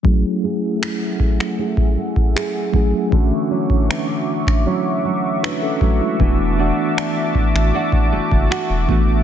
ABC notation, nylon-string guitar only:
X:1
M:4/4
L:1/16
Q:1/4=78
K:F#m
V:1 name="Nylon-string guitar"
F,2 [A,EG]2 E4 [A,EG]2 A,2 G2 A,2 | D,2 [F,CE]2 B, C3 [F,CE]2 F,2 E2 F,2 | E,2 [A,DF]2 D4 [A,DF]2 A,2 F2 A,2 |]